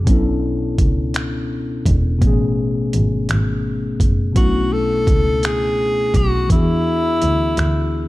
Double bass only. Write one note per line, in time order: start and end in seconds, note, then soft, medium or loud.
0.07 0.75 B1 medium
0.79 1.82 C#2 medium
1.86 2.18 E1 medium
2.22 2.89 A1 medium
2.94 3.26 G#1 medium
3.30 3.97 G#1 medium
4.00 4.32 F#1 medium
4.36 5.03 B1 medium
5.08 6.11 C#2 medium
6.14 6.46 B1 medium
6.50 7.18 E2 medium
7.22 7.54 D2 medium
7.58 8.08 D2 medium